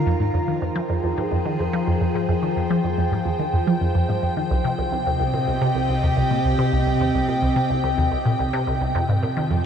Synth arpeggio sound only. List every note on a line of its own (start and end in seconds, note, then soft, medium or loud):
0.06 0.16 F2 medium
0.20 0.29 G#2 medium
0.34 0.40 F2 medium
0.48 0.61 D#3 medium
0.62 0.71 F2 medium
0.76 0.85 F3 loud
0.90 0.99 F2 medium
1.04 1.13 F2 medium
1.18 1.27 G#2 medium
1.32 1.37 F2 medium
1.45 1.58 D#3 medium
1.60 1.69 F2 medium
1.73 1.82 F3 loud
1.87 1.96 F2 medium
2.01 2.10 F2 medium
2.15 2.24 G#2 medium
2.29 2.34 F2 medium
2.42 2.56 D#3 medium
2.56 2.66 F2 medium
2.70 2.80 F3 loud
2.84 2.93 F2 medium
2.98 3.07 F2 medium
3.12 3.21 G#2 medium
3.25 3.31 F2 medium
3.39 3.53 D#3 medium
3.53 3.63 F2 medium
3.67 3.77 F3 loud
3.81 3.91 F2 medium
3.95 4.04 F2 medium
4.09 4.18 G#2 medium
4.23 4.29 F2 medium
4.37 4.50 D#3 medium
4.51 4.60 C2 medium
4.64 4.74 C3 loud
4.78 4.88 C2 medium
4.92 5.02 C2 medium
5.06 5.16 D#2 medium
5.20 5.26 C2 medium
5.34 5.47 A#2 medium
5.48 5.57 C2 medium
5.61 5.71 C3 loud
5.75 5.85 C2 medium
5.89 5.99 C2 medium
6.03 6.13 D#2 medium
6.17 6.23 C2 medium
6.31 6.44 A#2 medium
6.45 6.54 C2 medium
6.59 6.68 C3 medium
6.73 6.82 C2 medium
6.86 6.96 C2 medium
7.01 7.10 D#2 medium
7.15 7.20 C2 medium
7.28 7.42 A#2 medium
7.42 7.52 C2 medium
7.56 7.65 C3 medium
7.70 7.80 C2 medium
7.84 7.93 C2 medium
7.98 8.07 D#2 medium
8.12 8.17 C2 medium
8.25 8.39 A#2 medium
8.39 8.49 C2 medium
8.53 8.63 C3 loud
8.67 8.77 C2 medium
8.81 8.91 C2 medium
8.95 9.04 F2 medium
9.09 9.18 G#2 medium
9.23 9.28 A#2 medium
9.37 9.50 D#3 medium
9.50 9.60 F2 medium